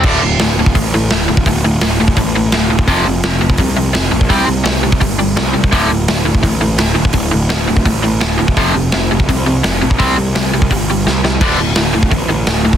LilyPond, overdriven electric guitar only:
\new Staff \with { instrumentName = "Overdriven electric guitar" } { \clef bass \time 4/4 \key d \minor \tempo 4 = 169 <d, a, d>8 <d, a,>8 <d, a,>8 <d, a,>8 <d, a,>8 <d, a,>8 <d, a,>8 <d, a,>8 | <d, a,>8 <d, a,>8 <d, a,>8 <d, a,>8 <d, a,>8 <d, a,>8 <d, a,>8 <d, a,>8 | <f, c f>8 <f, c>8 <f, c>8 <f, c>8 <f, c>8 <f, c>8 <f, c>8 <f, c>8 | <c g c'>8 <c g>8 <c g>8 <c g>8 <c g>8 <c g>8 <c g>8 <c g>8 |
<d, a, d>8 <d, a,>8 <d, a,>8 <d, a,>8 <d, a,>8 <d, a,>8 <d, a,>8 <d, a,>8 | <d, a,>8 <d, a,>8 <d, a,>8 <d, a,>8 <d, a,>8 <d, a,>8 <d, a,>8 <d, a,>8 | <f, c f>8 <f, c>8 <f, c>8 <f, c>8 <f, c>8 <f, c>8 <f, c>8 <f, c>8 | <c g c'>8 <c g>8 <c g>8 <c g>8 <c g>8 <c g>8 <c g>8 <c g>8 |
<d, a, d>8 <d, a,>8 <d, a,>8 <d, a,>8 <d, a,>8 <d, a,>8 <d, a,>8 <d, a,>8 | }